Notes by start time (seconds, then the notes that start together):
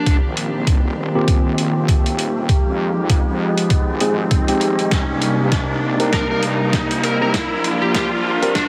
Already playing: D4, riser
0.06 D#1 D#3 A#3 C4 G4, kick, closed hi-hat
0.24 A#1
0.37 closed hi-hat
0.67 D#1, kick, closed hi-hat
1.15 A#3 C4 F4 G4
1.28 D#1, kick, closed hi-hat
1.58 A#1, closed hi-hat
1.88 kick, closed hi-hat
2.06 D#1, closed hi-hat
2.19 closed hi-hat
2.48 F3 G#3 D#4, kick, closed hi-hat
2.66 F2
3.10 kick, closed hi-hat
3.58 closed hi-hat
3.70 kick, closed hi-hat
3.88 G#1
4.00 G#3 C4 D#4 G#4, closed hi-hat
4.31 D#1, kick, closed hi-hat
4.48 G#3 C4 D#4 G4, closed hi-hat
4.61 closed hi-hat
4.79 closed hi-hat
4.91 C2 C3 G3 A#3, kick, snare, closed hi-hat
5.09 G2
5.22 closed hi-hat
5.52 C2, kick, snare, closed hi-hat
6.00 C4 D#4 G4 A#4, closed hi-hat
6.13 C2 A#4, kick, snare, closed hi-hat
6.31 A#4
6.43 G2, closed hi-hat
6.73 kick, snare, closed hi-hat
6.91 C2, closed hi-hat
7.04 A#4, closed hi-hat
7.21 C4 D#4 G4 A#4
7.34 F3 D4, kick, snare, closed hi-hat
7.52 A#1
7.64 closed hi-hat
7.82 G4
7.95 G4, kick, snare, closed hi-hat
8.42 C4 D4 G4 A#4, closed hi-hat
8.55 D4, kick, snare, closed hi-hat